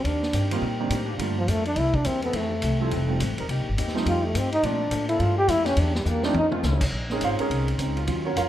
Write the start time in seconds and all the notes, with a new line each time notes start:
0.04 D#2 D#3 A#3 C4 D4 G4, kick, ride
0.23 snare
0.33 G2 D#3 A#3 C4 G4, kick, hi-hat pedal, ride
0.50 D#3 G3 A#3 C4 D#4 F4 G4 C5, ride
0.62 A#2 D#3 A#3 C4 G4, kick
0.79 D#3 G3 A#3 C4 D4
0.90 A2 D#3 A#3 C4 G4, kick, hi-hat pedal, ride
1.06 G3 D4 F4 G4
1.18 G2 D3 F3 G3 A3 A#3 D4 F4, kick, ride
1.38 F3
1.48 F2 G2 F3 A3 A#3 D4, kick, hi-hat pedal, ride
1.65 D4, ride
1.76 C2 C3 G3 A#3 E4, kick, ride
1.94 D4, kick
2.04 E2 C3 G3 A#3 C4 E4, kick, hi-hat pedal, ride
2.22 F3 B3 C4 E4 A4, ride
2.33 F2 E3 A3 C4, kick, ride
2.62 C2 F2 E3 A3 C4, kick, hi-hat pedal, ride
2.78 F3 G3 A3 C4 E4 A4
2.83 E4
2.91 F1 F2 E3 A3 C4, kick, ride
3.08 F3 G3 A3 C4 F4
3.20 A1 F2 E3 A3 C4, kick, hi-hat pedal, ride
3.30 F1
3.36 E1 G3 C4 D#4 A#4, ride
3.48 C2 C3 A#3 D#4 G4, kick, ride
3.60 A#1
3.69 G1
3.77 D#2 C3 A#3 D#4 G4, kick, hi-hat pedal, ride
3.88 snare
3.94 F3 G3 A3 C4 D#4 G4, snare
4.05 F2 F3 A3 D#4 F4 G4, kick, ride
4.24 A3
4.34 G2 F3 A3 C4 D#4 G4, kick, hi-hat pedal, ride
4.52 D#4, ride
4.63 A#2 F3 A3 A#3 C4 D4, kick, ride
4.91 A2 A#2 F3 A3 D4, kick, hi-hat pedal, ride
5.06 F3 A#3 D4 E4 A4, ride
5.19 G2 A#2 F3 A3 D4 F4, kick, ride
5.38 G4
5.48 F2 A#2 F3 A3 D4 E4, kick, hi-hat pedal, ride
5.63 E3 A#3 C#4 D4 G4, snare, ride
5.77 E2 E3 A#3 D4 G4, kick, ride
5.95 G3, snare
6.05 E2 E3 A#3 D4 G4, hi-hat pedal
6.23 F3 A3 C4 C#4 D4 D#4, snare
6.34 F2 D#3 A3 C#4 D#4, high tom
6.50 D#3 F3 A3 C4 C#4 F4, mid tom
6.63 C#2 F2 D#3 A3 C#4, snare, hi-hat pedal
6.81 kick, crash
6.92 A#1, kick
7.10 G#3 C4 C#4 D#4 G#4 A#4 C#5, snare
7.21 G#1 F4 C5 C#5 F5, kick, hi-hat pedal, ride
7.39 C#4 G#4 A#4 C#5, muted upright bass stroke, ride
7.50 C2, kick, ride
7.68 ride
7.78 C#2 G#3 C4 C#4 D#4, kick, hi-hat pedal, ride
7.95 D#3 F#3 C#4 F4, ride
8.07 D#2 F#3 C#4 F4, kick, ride
8.25 C#4 F#4 A#4 C#5
8.36 F2 F4 A#4 C#5 F5, kick, hi-hat pedal, ride